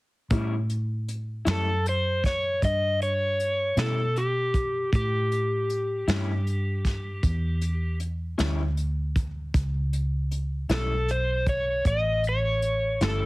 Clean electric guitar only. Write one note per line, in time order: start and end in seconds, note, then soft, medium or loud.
0.31 0.54 A2 medium
0.31 0.54 G3 medium
0.31 0.54 C#4 medium
0.31 0.55 E4 medium
1.45 1.70 A2 soft
1.45 1.70 G3 medium
1.45 1.69 C#4 soft
1.45 1.69 E4 medium
3.77 4.01 A2 soft
3.77 4.01 G3 soft
3.77 4.01 C#4 medium
3.77 4.00 E4 medium
6.08 6.32 A2 medium
6.08 6.32 G3 medium
6.08 6.31 C#4 medium
6.08 6.31 E4 medium
8.38 8.63 A2 soft
8.38 8.62 G3 medium
8.38 8.62 C#4 medium
8.38 8.62 E4 medium
10.70 10.94 A2 soft
10.70 10.94 G3 medium
10.70 10.94 C#4 medium
10.70 10.93 E4 medium
13.01 13.25 A2 medium
13.01 13.25 G3 soft
13.01 13.25 C#4 medium
13.01 13.24 E4 medium